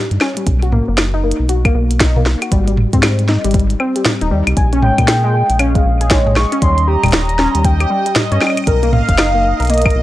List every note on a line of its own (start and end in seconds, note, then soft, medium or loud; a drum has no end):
0.01 closed hi-hat soft
0.11 0.19 G2 medium
0.11 closed hi-hat soft
0.21 0.32 C#4 loud
0.21 snare medium
0.21 claves medium
0.37 0.41 G3 medium
0.37 closed hi-hat medium
0.47 0.82 B1 loud
0.47 kick loud
0.47 closed hi-hat medium
0.62 0.67 F#4 medium
0.62 closed hi-hat soft
0.72 0.84 A#3 loud
0.72 mid tom medium
0.88 1.33 F#1 loud
0.88 0.95 A#3 medium
0.98 snare loud
0.98 closed hi-hat medium
0.98 claves medium
1.14 1.21 D#4 loud
1.24 1.30 A#3 medium
1.31 closed hi-hat medium
1.39 1.71 B1 medium
1.49 1.56 F#4 medium
1.49 closed hi-hat medium
1.65 1.72 A#3 loud
1.65 kick loud
1.65 closed hi-hat soft
1.65 claves medium
1.75 2.36 B1 loud
1.75 1.86 A#3 medium
1.91 closed hi-hat medium
2.00 2.12 D#4 loud
2.00 kick loud
2.00 snare loud
2.00 closed hi-hat medium
2.16 2.20 A#3 medium
2.16 mid tom medium
2.26 snare medium
2.42 2.46 F#4 medium
2.42 closed hi-hat medium
2.42 claves medium
2.52 2.87 G#1 loud
2.52 2.63 G3 loud
2.52 kick loud
2.52 closed hi-hat medium
2.68 2.75 G3 medium
2.68 closed hi-hat soft
2.77 mid tom medium
2.93 3.38 G#2 loud
2.93 3.00 C4 loud
2.93 kick medium
2.93 closed hi-hat medium
3.03 3.10 G3 medium
3.03 snare loud
3.03 closed hi-hat medium
3.03 claves medium
3.19 closed hi-hat soft
3.29 3.35 D#4 medium
3.29 snare medium
3.44 3.76 G#1 medium
3.44 3.51 G3 loud
3.44 closed hi-hat medium
3.51 closed hi-hat soft
3.54 3.66 G3 medium
3.54 kick loud
3.54 closed hi-hat medium
3.60 closed hi-hat soft
3.70 closed hi-hat soft
3.80 3.91 C4 loud
3.80 claves medium
3.96 4.00 G3 medium
3.96 closed hi-hat medium
4.05 snare loud
4.05 closed hi-hat medium
4.05 mid tom medium
4.21 4.33 D#1 medium
4.21 4.26 D#4 medium
4.21 closed hi-hat soft
4.31 4.43 D#2 medium
4.31 4.43 G3 loud
4.47 4.54 C2 medium
4.47 4.54 G3 medium
4.47 closed hi-hat medium
4.47 claves medium
4.57 4.92 A#1 loud
4.57 10.03 D#5 medium
4.57 4.81 G#5 loud
4.57 kick loud
4.57 closed hi-hat medium
4.73 4.80 C#4 loud
4.73 closed hi-hat soft
4.82 4.89 G#3 medium
4.82 5.61 G5 loud
4.82 mid tom medium
4.98 5.43 A#2 loud
4.98 kick medium
4.98 closed hi-hat medium
4.98 claves medium
5.08 5.23 G#4 medium
5.08 snare loud
5.08 closed hi-hat medium
5.24 5.31 G#3 loud
5.34 5.45 G#3 medium
5.50 5.81 A#1 medium
5.50 closed hi-hat medium
5.59 5.71 C#4 loud
5.59 6.12 F5 loud
5.59 closed hi-hat medium
5.59 claves medium
5.75 5.79 G#3 medium
5.75 kick loud
5.75 closed hi-hat soft
5.85 6.46 A#1 loud
6.01 6.10 G#4 medium
6.01 closed hi-hat soft
6.11 6.22 G#3 loud
6.11 6.36 C#5 loud
6.11 kick loud
6.11 snare loud
6.11 closed hi-hat medium
6.27 6.34 G#3 medium
6.27 mid tom medium
6.36 6.63 C#6 loud
6.36 snare medium
6.36 claves medium
6.52 6.59 C#4 loud
6.52 closed hi-hat soft
6.62 6.97 D#2 loud
6.62 6.69 G3 medium
6.62 6.89 C6 loud
6.62 kick loud
6.62 closed hi-hat medium
6.78 closed hi-hat soft
6.88 7.03 G4 medium
6.88 7.66 A#5 loud
7.04 7.48 D#1 loud
7.04 7.10 G3 loud
7.04 kick medium
7.04 closed hi-hat soft
7.04 mid tom loud
7.04 claves medium
7.06 closed hi-hat soft
7.08 closed hi-hat soft
7.11 7.25 G3 medium
7.11 snare loud
7.11 closed hi-hat soft
7.13 closed hi-hat medium
7.21 closed hi-hat soft
7.25 closed hi-hat soft
7.29 closed hi-hat soft
7.39 7.50 C#4 loud
7.39 snare medium
7.55 7.86 D#2 medium
7.55 7.59 G3 medium
7.55 closed hi-hat medium
7.65 8.17 G5 loud
7.65 kick loud
7.65 closed hi-hat medium
7.80 7.90 G4 medium
7.80 closed hi-hat soft
7.80 claves medium
7.90 8.01 G3 loud
8.06 8.13 G3 medium
8.06 closed hi-hat soft
8.16 8.57 D#5 loud
8.16 snare loud
8.16 closed hi-hat medium
8.16 mid tom medium
8.32 8.39 G2 medium
8.32 8.39 C#4 loud
8.32 closed hi-hat soft
8.41 8.48 G3 medium
8.41 snare medium
8.41 claves medium
8.47 claves medium
8.50 claves medium
8.57 closed hi-hat medium
8.57 claves soft
8.64 9.02 B1 loud
8.64 8.91 A#4 loud
8.64 8.82 A#4 medium
8.64 kick loud
8.64 closed hi-hat medium
8.64 claves soft
8.83 8.90 A#3 loud
8.83 closed hi-hat soft
8.93 9.04 A#3 medium
8.93 9.71 F5 loud
8.93 mid tom medium
9.09 9.54 F#1 medium
9.09 kick medium
9.09 closed hi-hat medium
9.18 9.30 D#4 loud
9.18 snare loud
9.18 closed hi-hat medium
9.18 claves medium
9.34 9.38 A#3 medium
9.60 9.91 B1 medium
9.60 9.69 A#4 medium
9.60 closed hi-hat soft
9.62 closed hi-hat soft
9.65 closed hi-hat soft
9.67 9.81 A#3 loud
9.67 10.03 D#5 loud
9.67 closed hi-hat soft
9.70 closed hi-hat medium
9.74 closed hi-hat soft
9.78 closed hi-hat soft
9.82 9.93 A#3 medium
9.82 kick loud
9.82 closed hi-hat soft
9.82 claves medium
9.90 closed hi-hat soft
9.95 10.03 B1 loud